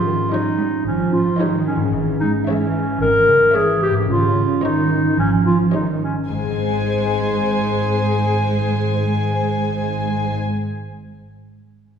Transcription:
Already playing: double bass section G#1, harp G#2 G3 C#4 D#4, clarinet F4
0.05 cello section D#3
0.32 cello section F3, viola section G3, clarinet D#4, violin section C#5 D#5
0.58 cello section G3
0.85 double bass section G#1, cello section F3, clarinet C#4
1.13 clarinet F4
1.39 cello section D#3, viola section G3, clarinet D#4, violin section C#5 D#5
1.67 clarinet C#4
1.75 harp G#2
1.80 harp G#3
1.85 harp C#4
1.89 harp E4
1.93 double bass section G#1, cello section E3
2.20 cello section G#3, clarinet D#4
2.47 cello section E3, viola section G#3, clarinet C#4, violin section C#5 E5
3.01 double bass section G#1, cello section D#3, clarinet A#4
3.28 cello section C#3
3.54 cello section E3, viola section G#3, clarinet G#4, violin section C#5 E5
3.82 clarinet G4
3.90 harp G#2
3.95 harp G3
3.99 harp C#4
4.04 harp D#4
4.09 double bass section G#1, cello section C#3, clarinet F4
4.63 cello section D#3, viola section G3, clarinet D#4, violin section C#5 D#5
5.18 double bass section G#1, cello section F3, clarinet C#4
5.46 clarinet F4
5.73 cello section D#3, viola section G3, clarinet D#4, violin section C#5 D#5
6.03 clarinet C#4
6.29 double bass section G#1, harp G#2, cello section G#2, viola section G#3, clarinet G#3, violin section C5 G#5
6.36 harp G#3
6.43 harp C4
6.50 harp D#4
6.58 harp C5

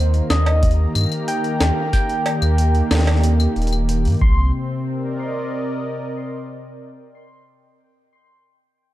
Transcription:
Already playing: sub bass D#2, analog synth pad D#3 A#3 C4 A#4 D#5 A#5, soft synth lead C5
0.10 analog synth pad G4, closed hi-hat
0.30 sub bass D#2, soft synth lead D#5, snare, claves
0.46 closed hi-hat, cowbell
0.63 kick, closed hi-hat
0.71 closed hi-hat
0.95 sub bass G2, closed hi-hat, claves
0.98 claves
1.01 claves
1.03 claves
1.06 claves
1.09 closed hi-hat, claves
1.12 claves
1.28 soft synth lead G5, closed hi-hat
1.44 closed hi-hat
1.61 sub bass D#2, snare, closed hi-hat, claves
1.93 soft synth lead G5, kick, closed hi-hat
2.09 closed hi-hat
2.26 closed hi-hat, cowbell
2.42 sub bass D#2, closed hi-hat, claves
2.58 closed hi-hat
2.75 closed hi-hat
2.91 sub bass D#2, snare, claves
2.95 snare
2.99 snare
3.03 snare
3.07 snare, closed hi-hat, cowbell
3.11 snare
3.15 snare
3.19 snare
3.24 closed hi-hat
3.40 closed hi-hat, claves
3.56 sub bass D#1, closed hi-hat
3.62 closed hi-hat
3.67 closed hi-hat
3.72 closed hi-hat, claves
3.89 closed hi-hat
4.05 sub bass G2, closed hi-hat
4.07 closed hi-hat
4.10 closed hi-hat
4.12 closed hi-hat
4.17 closed hi-hat
4.19 sub bass C2, analog synth pad C3, soft synth lead C6, kick, closed hi-hat
4.31 analog synth pad C4
4.74 analog synth pad A#4
4.84 analog synth pad D5
4.93 analog synth pad D#5

